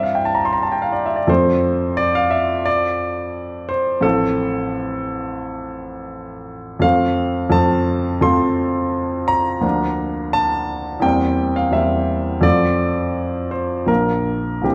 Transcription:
0.00 1.23 G2 medium
0.00 1.24 E3 soft
0.00 1.24 G3 soft
0.00 1.24 C4 soft
0.00 1.06 E5 medium
0.00 0.16 F5 medium
0.15 0.26 G5 medium
0.25 0.35 A5 medium
0.35 0.44 A#5 medium
0.45 0.54 C6 medium
0.53 0.62 A#5 medium
0.63 0.72 A5 medium
0.72 0.82 G5 medium
0.82 0.93 F5 medium
0.92 1.04 D5 medium
1.06 1.17 E5 medium
1.16 1.28 D5 medium
1.27 3.99 F2 medium
1.27 3.99 F3 soft
1.27 4.00 A3 soft
1.27 4.00 C4 soft
1.27 1.98 C5 medium
1.97 2.14 D5 medium
2.15 2.32 F5 medium
2.31 2.65 E5 medium
2.66 3.69 D5 medium
3.69 4.03 C5 medium
4.01 6.77 A1 medium
4.01 6.78 F3 soft
4.01 6.78 A3 soft
4.01 6.78 C4 soft
4.01 6.82 A4 medium
6.79 7.48 F2 medium
6.79 7.49 F3 soft
6.79 7.50 A3 soft
6.79 7.50 C4 soft
6.79 7.53 F5 medium
7.50 8.19 F2 medium
7.50 8.20 F3 soft
7.50 8.20 A3 soft
7.50 8.21 C4 soft
7.50 8.23 A5 medium
8.21 9.58 F2 medium
8.21 9.58 F3 soft
8.21 9.59 A3 soft
8.21 9.59 C4 soft
8.21 9.28 C6 medium
9.28 10.33 A#5 medium
9.61 10.98 D2 medium
9.61 10.98 F3 soft
9.61 10.98 A#3 soft
9.61 10.99 D4 soft
10.33 11.03 A5 medium
11.00 11.69 E2 medium
11.00 11.70 G3 soft
11.00 11.71 A#3 soft
11.00 11.71 C4 soft
11.00 11.55 G5 medium
11.56 11.74 F5 medium
11.71 12.41 E2 medium
11.71 12.41 G3 soft
11.71 12.42 A#3 soft
11.71 12.42 C4 soft
11.71 12.44 E5 medium
12.41 13.83 F2 medium
12.41 13.84 F3 soft
12.41 13.84 A3 soft
12.41 13.84 C4 soft
12.41 13.52 D5 medium
13.51 13.88 C5 medium
13.86 14.61 A#1 soft
13.86 14.61 F3 soft
13.86 14.62 A#3 soft
13.86 14.62 D4 soft
13.86 14.64 A#4 medium
14.61 14.74 C2 soft
14.61 14.74 E3 soft
14.61 14.74 A#3 soft
14.61 14.74 C4 soft
14.61 14.73 G4 medium

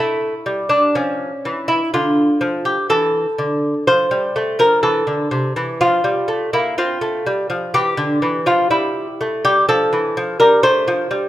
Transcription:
0.00 0.33 A3 medium
0.00 0.68 E4 medium
0.46 0.82 G3 medium
0.69 0.95 D4 medium
0.95 1.31 F3 medium
0.95 1.66 C#4 medium
1.45 1.80 E3 medium
1.68 1.93 E4 medium
1.94 2.28 D3 medium
1.94 2.63 F4 medium
2.41 2.76 F3 medium
2.65 2.89 G4 medium
2.90 3.25 E3 medium
2.90 3.83 A4 medium
3.38 3.73 D3 medium
3.87 4.10 F3 medium
3.87 4.56 C5 medium
4.11 4.34 G3 medium
4.36 4.58 A3 medium
4.59 4.82 F3 medium
4.59 4.82 A#4 medium
4.83 5.06 E3 soft
4.83 5.76 A4 medium
5.07 5.30 D3 medium
5.31 5.55 C3 medium
5.56 5.79 E3 medium
5.81 6.04 F3 medium
5.81 6.51 F4 medium
6.04 6.28 G3 medium
6.28 6.52 A3 medium
6.53 6.77 A#3 medium
6.53 6.77 E4 medium
6.78 7.01 C4 medium
6.78 7.70 F4 medium
7.01 7.25 A3 medium
7.26 7.49 G3 medium
7.50 7.73 F3 medium
7.74 7.97 E3 medium
7.74 8.44 G4 medium
7.97 8.21 D3 medium
8.22 8.46 E3 medium
8.46 8.70 F3 medium
8.46 8.70 F4 medium
8.71 9.06 G3 soft
8.71 9.41 E4 medium
9.21 9.44 A3 medium
9.45 9.68 G3 medium
9.45 9.68 G4 medium
9.69 9.91 F3 medium
9.69 10.37 A4 medium
9.93 10.15 E3 medium
10.17 10.39 F3 medium
10.40 10.62 G3 medium
10.40 10.63 A#4 medium
10.63 10.86 A3 medium
10.63 11.29 C5 medium
10.88 11.09 F3 medium
11.11 11.29 G3 medium

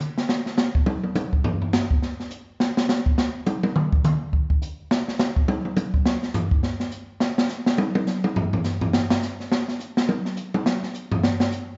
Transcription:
0.00 mid tom soft
0.18 snare medium
0.29 snare medium
0.46 snare soft
0.57 snare medium
0.57 hi-hat pedal medium
0.75 kick medium
0.86 high tom medium
1.03 high tom soft
1.15 hi-hat pedal medium
1.15 high tom medium
1.33 kick medium
1.44 floor tom medium
1.62 floor tom soft
1.73 snare medium
1.73 hi-hat pedal medium
1.91 kick medium
2.02 snare soft
2.20 snare soft
2.31 hi-hat pedal medium
2.60 snare medium
2.77 snare medium
2.89 snare medium
2.89 hi-hat pedal medium
3.06 kick medium
3.18 snare medium
3.46 hi-hat pedal soft
3.46 high tom medium
3.63 high tom medium
3.76 mid tom medium
3.92 kick medium
4.04 hi-hat pedal medium
4.04 mid tom loud
4.33 kick medium
4.50 kick medium
4.62 hi-hat pedal medium
4.91 snare medium
5.08 snare medium
5.19 snare medium
5.19 hi-hat pedal medium
5.36 kick medium
5.48 high tom medium
5.65 high tom soft
5.76 hi-hat pedal medium
5.76 high tom medium
5.94 kick medium
6.06 snare medium
6.23 snare soft
6.34 floor tom medium
6.34 hi-hat pedal medium
6.51 kick medium
6.63 snare medium
6.80 snare soft
6.91 hi-hat pedal medium
7.20 snare medium
7.38 snare medium
7.49 snare soft
7.49 hi-hat pedal medium
7.66 snare medium
7.78 high tom loud
7.95 high tom loud
8.07 snare soft
8.07 hi-hat pedal medium
8.24 high tom medium
8.36 floor tom medium
8.53 floor tom medium
8.64 snare soft
8.64 hi-hat pedal medium
8.81 floor tom loud
8.93 snare loud
9.10 snare medium
9.22 snare soft
9.22 hi-hat pedal medium
9.40 snare soft
9.52 snare medium
9.68 snare soft
9.80 hi-hat pedal medium
9.97 snare medium
10.09 high tom medium
10.25 snare soft
10.37 hi-hat pedal medium
10.54 high tom medium
10.66 snare medium
10.83 snare soft
10.94 hi-hat pedal medium
11.12 floor tom loud
11.23 snare medium
11.40 snare loud
11.52 hi-hat pedal medium

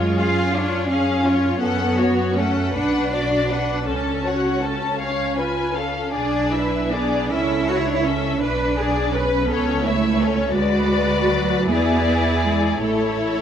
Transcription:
0.00 1.58 F#2 soft
0.00 0.18 G#3 medium
0.00 0.18 F4 soft
0.00 0.19 F4 soft
0.00 0.18 C#5 soft
0.18 0.54 C#4 soft
0.18 0.54 F4 medium
0.18 0.54 G#4 soft
0.18 0.54 F5 soft
0.54 0.90 D4 medium
0.54 0.90 F4 soft
0.54 0.90 C#5 soft
0.88 1.22 C#4 soft
0.88 1.61 C#4 medium
0.88 1.23 G#4 soft
0.88 1.23 F5 soft
1.24 1.61 F4 soft
1.24 1.61 C#5 soft
1.60 2.73 F#2 soft
1.60 2.35 B3 medium
1.60 1.95 C#4 soft
1.60 1.95 A4 soft
1.60 1.96 F#5 soft
1.97 2.36 F#4 soft
1.97 2.37 C#5 soft
2.36 2.75 A3 soft
2.36 2.75 C#4 soft
2.36 2.76 A4 soft
2.36 2.76 F#5 soft
2.74 3.88 B1 soft
2.74 3.87 D4 medium
2.74 3.11 D4 soft
2.74 3.10 B4 soft
2.74 3.11 F#5 soft
3.13 3.51 F#4 soft
3.13 3.50 D5 soft
3.13 3.51 D5 soft
3.50 3.88 D4 soft
3.50 3.87 B4 soft
3.50 3.88 F#5 soft
3.86 5.93 C#2 soft
3.86 4.98 C#4 soft
3.86 4.23 C#4 soft
3.86 4.22 A4 soft
3.86 4.23 A5 soft
4.25 4.63 F#4 soft
4.25 4.62 C#5 soft
4.25 4.63 F#5 soft
4.61 5.01 C#4 soft
4.61 4.99 A4 soft
4.61 5.01 A5 soft
4.99 5.37 C#4 soft
4.99 5.35 C#5 soft
4.99 5.35 F5 soft
5.37 5.77 F4 soft
5.37 5.76 B4 soft
5.37 5.76 G#5 soft
5.74 6.14 C#4 soft
5.74 6.13 A4 soft
5.74 6.13 F5 soft
6.12 7.29 B1 soft
6.12 6.89 D4 soft
6.12 6.51 D4 soft
6.12 6.49 G#4 soft
6.12 6.50 D5 soft
6.52 6.93 E4 soft
6.52 6.93 B4 soft
6.52 6.93 E5 soft
6.92 7.33 B3 medium
6.92 7.33 D4 soft
6.92 7.33 G#4 soft
6.92 7.33 D5 soft
7.32 8.43 C#2 soft
7.32 7.68 C#4 soft
7.32 7.71 E4 medium
7.32 7.68 A4 soft
7.32 7.68 E5 soft
7.69 8.07 E4 soft
7.69 7.80 F#4 medium
7.69 8.06 C#5 soft
7.69 8.08 C#5 soft
7.79 7.89 E4 medium
7.88 7.97 D4 medium
7.96 8.06 E4 medium
8.06 8.43 C#4 medium
8.06 8.43 C#4 soft
8.06 8.43 A4 soft
8.06 8.43 E5 soft
8.42 9.48 B1 soft
8.42 9.13 D4 medium
8.42 8.76 B4 soft
8.79 9.15 G#4 soft
8.79 9.15 D5 soft
9.13 9.49 C#4 medium
9.13 9.50 B4 soft
9.13 9.51 B4 soft
9.49 10.56 C#2 medium
9.49 9.85 B3 medium
9.49 9.83 C#4 soft
9.49 9.83 A4 soft
9.49 9.84 C#5 soft
9.84 10.55 A3 medium
9.84 10.20 E4 soft
9.84 10.20 C#5 soft
9.84 10.21 E5 soft
10.20 10.56 C#4 soft
10.20 10.56 A4 soft
10.20 10.56 C#5 soft
10.54 11.67 D2 medium
10.54 11.30 G#3 medium
10.54 11.67 F#4 soft
10.54 11.67 B4 soft
10.54 11.68 D5 medium
11.31 11.71 F#3 medium
11.70 12.82 E2 medium
11.70 12.46 B3 medium
11.70 12.84 E4 soft
11.70 12.84 G#4 soft
11.70 12.83 D5 soft
12.46 12.84 G#3 soft
12.83 13.41 A1 soft
12.83 13.41 A3 soft
12.83 13.41 E4 soft
12.83 13.41 A4 soft
12.83 13.41 C#5 soft

